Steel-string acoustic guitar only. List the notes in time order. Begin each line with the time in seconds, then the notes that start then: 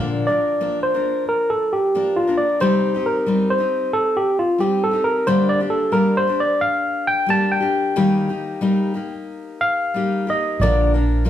Already playing: A#2 D3 F3 A#3 D4 A#4
0.27 F3 A#3 D4 A#4
0.61 F3 A#3 D4 A#4
0.94 F3 A#3 D4 A#4
1.95 F3 A#3 D4 A#4
2.27 F3 A#3 D4 A#4
2.60 C3 G3 C4 D#4 G4
2.95 C4 D#4 G4
3.26 G3 C4 D#4 G4
3.58 C4 D#4 G4
4.58 G3 C4 D#4 G4
4.91 C4 D#4 G4
5.27 D3 G3 A#3 D4 G4
5.60 A#3 D4 G4
5.92 G3 A#3 D4 G4
6.27 A#3 D4 G4
7.26 G3 A#3 D4 G4
7.60 A#3 D4 G4
7.96 D#3 G3 A#3 D#4 G4
8.29 A#3 D#4 G4
8.61 G3 A#3 D#4 G4
8.94 A#3 D#4 G4
9.94 G3 A#3 D#4 G4
10.27 A#3 D#4 G4
10.61 A#2 D3 F3 A#3 D4 A#4
10.94 F3 A#3 D4 A#4
11.25 F3 A#3 D4 A#4